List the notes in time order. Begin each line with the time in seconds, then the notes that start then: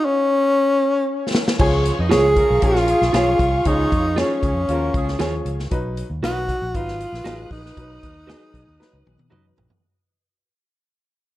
0.05 C#4
1.35 snare
1.48 snare
1.58 C#2 F3 G#3 C#4 F4 G#4 C#5 F5 C#6, kick, crash
1.85 closed hi-hat
1.98 F2 D#4 B4 D#5
2.09 C#2 F3 G#3 C#4 F4 G#4 C#5, snare, closed hi-hat
2.36 F3 C#4 A#4, kick, closed hi-hat
2.50 B1
2.62 A#1 F3 C#4 F4 G#4, kick, closed hi-hat
2.76 snare
2.88 F3 C#4 G#4, closed hi-hat
3.02 B1, snare
3.13 B1 F3 C#4 F4 G#4 C#5, snare, closed hi-hat
3.39 C2, kick, closed hi-hat
3.65 C#2 F3 G#3 C#4 D#4 F4 G#4 C#5, kick, closed hi-hat
3.92 F2, kick, closed hi-hat
4.05 D#4 B4 D#5
4.16 F3 G#3 C#4 F4 G#4 C#5, snare, closed hi-hat
4.43 C#2 F3 C#4 G#4, kick, closed hi-hat
4.55 F2
4.69 D#2 F3 A#3 C#4 F4 F#4 A#4, closed hi-hat
4.94 C#2 F3 C#4 G#4, kick, closed hi-hat
5.08 snare
5.19 D#2 F3 C#4 F4 G#4 C#5, snare, closed hi-hat
5.45 C#2, closed hi-hat
5.59 snare
5.71 B1 F#3 D#4 B4, kick, closed hi-hat
5.97 closed hi-hat
6.10 D#2
6.22 B1 F#3 D#4 F#4 B4 D#5, snare, closed hi-hat
6.48 kick, closed hi-hat
6.62 A#1
6.74 G#1 F#3 D#4 F4 B4 D#6 F#6, kick, closed hi-hat
6.88 snare
7.00 closed hi-hat
7.13 A#1, snare
7.24 A1 F#3 D#4 F#4 G#4 B4 D#5, snare, closed hi-hat
7.50 A#1 D#4, kick, open hi-hat
7.66 snare
7.77 B1 F#3 D#4 B4, kick, closed hi-hat
8.03 D#2, kick, closed hi-hat
8.27 F#3 D#4 F#4 G#4 B4 D#5, snare, closed hi-hat
8.54 B1, kick, closed hi-hat
8.68 D#2
8.79 F#3 D#4 B4, snare
8.93 C#2
9.07 B1, high tom
9.18 B2, high tom
9.30 F#2 F#3 D#4 F#4 B4 D#5, mid tom
9.58 A#1, floor tom
9.70 floor tom